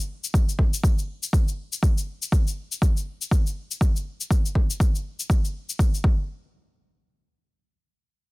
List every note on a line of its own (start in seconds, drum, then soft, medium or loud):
0.24 shaker medium
0.34 kick loud
0.34 shaker medium
0.49 shaker soft
0.59 kick medium
0.74 shaker medium
0.84 kick loud
0.84 shaker medium
0.98 shaker soft
1.23 shaker medium
1.33 kick loud
1.33 shaker medium
1.48 shaker soft
1.73 shaker medium
1.83 kick loud
1.83 shaker medium
1.98 shaker soft
2.22 shaker medium
2.32 kick loud
2.32 shaker medium
2.47 shaker soft
2.72 shaker medium
2.82 kick loud
2.82 shaker medium
2.97 shaker soft
3.22 shaker medium
3.31 kick loud
3.31 shaker medium
3.47 shaker soft
3.71 shaker medium
3.81 kick loud
3.81 shaker medium
3.96 shaker soft
4.21 shaker medium
4.31 kick loud
4.31 shaker medium
4.46 shaker soft
4.55 kick medium
4.70 shaker medium
4.80 kick loud
4.80 shaker medium
4.95 shaker soft
5.20 shaker medium
5.30 kick loud
5.30 shaker medium
5.45 shaker soft
5.70 shaker medium
5.79 kick loud
5.79 shaker medium
5.94 shaker soft
6.04 kick loud